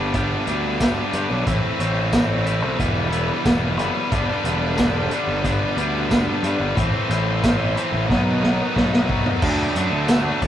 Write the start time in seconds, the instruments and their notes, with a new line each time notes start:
Already playing: picked electric bass G1, distorted electric guitar G2 D3 G3 B3 D4 G4
0.13 distorted electric guitar G2 D3 G3 B3 D4 G4, kick, closed hi-hat
0.46 picked electric bass D2, distorted electric guitar G2 D3 G3 B3 D4 G4, closed hi-hat
0.80 distorted electric guitar G2 D3 G3 B3 D4 G4, kick, snare, closed hi-hat, tambourine
1.13 distorted electric guitar G2 D3 G3 B3 D4 G4, picked electric bass G2, closed hi-hat
1.30 picked electric bass B1
1.46 picked electric bass A1, distorted electric guitar A2 E3 A3 C4 E4, kick, closed hi-hat
1.79 picked electric bass A1, distorted electric guitar A2 E3 A3 C4 E4, closed hi-hat
2.12 distorted electric guitar A2 E3 A3 C4 E4, kick, snare, closed hi-hat, tambourine
2.45 distorted electric guitar A2 E3 A3 C4 E4, closed hi-hat
2.62 picked electric bass C2
2.78 picked electric bass E1, distorted electric guitar E3 G3 B3 E4, kick, closed hi-hat
3.11 distorted electric guitar E3 G3 B3 E4, closed hi-hat
3.45 picked electric bass E1, distorted electric guitar E3 G3 B3 E4, kick, snare, closed hi-hat, tambourine
3.77 picked electric bass F#1, distorted electric guitar E3 G3 B3 E4, closed hi-hat
4.11 picked electric bass G1, distorted electric guitar G2 D3 G3 B3 D4, tonewheel organ C4 D#4 G#4 C5, kick, closed hi-hat
4.33 tonewheel organ B3 D4 G4 B4
4.44 picked electric bass E1, distorted electric guitar G2 D3 G3 B3 D4, closed hi-hat
4.77 distorted electric guitar G2 D3 G3 B3 D4, kick, snare, closed hi-hat, tambourine
5.11 distorted electric guitar G2 D3 G3 B3 D4, closed hi-hat
5.27 picked electric bass G1
5.43 distorted electric guitar G2 D3 G3 B3 D4, kick, closed hi-hat
5.77 picked electric bass D2, distorted electric guitar G2 D3 G3 B3 D4, closed hi-hat
6.10 distorted electric guitar G2 D3 G3 B3 D4, kick, snare, closed hi-hat, tambourine
6.43 picked electric bass G2, distorted electric guitar G2 D3 G3 B3 D4, closed hi-hat
6.60 picked electric bass G1
6.73 picked electric bass A1, distorted electric guitar A2 E3 A3, tonewheel organ C4 E4 A4 C5, kick, closed hi-hat
6.78 distorted electric guitar C4 E4
7.09 picked electric bass A1, distorted electric guitar A2 E3 A3 C4 E4, closed hi-hat
7.43 distorted electric guitar A2 E3 A3 C4 E4, kick, snare, closed hi-hat, tambourine
7.76 distorted electric guitar A2 E3 A3 C4 E4, closed hi-hat
7.92 picked electric bass A1
8.08 picked electric bass B1, distorted electric guitar B2 D#3 F#3 B3 D#4, tonewheel organ B3 D#4 F#4 B4, kick, snare
8.41 distorted electric guitar B2 D#3 F#3 B3 D#4, snare
8.75 picked electric bass B1, distorted electric guitar B2 D#3 F#3 B3 D#4, kick, snare
8.93 snare
9.08 picked electric bass C2, distorted electric guitar B2 D#3 F#3 B3 D#4, kick
9.26 floor tom
9.40 picked electric bass D2, distorted electric guitar D3 F#3 A3, tonewheel organ A3 D4 F#4 A4, kick, crash
9.45 distorted electric guitar D4
9.75 picked electric bass F#2, distorted electric guitar D3 F#3 A3 D4, closed hi-hat
9.92 picked electric bass D2
10.08 distorted electric guitar D3 F#3 A3 D4, snare, clap, closed hi-hat, tambourine
10.24 distorted electric guitar F#3 A3 D4
10.41 picked electric bass D2, muted distorted electric guitar stroke, kick, closed hi-hat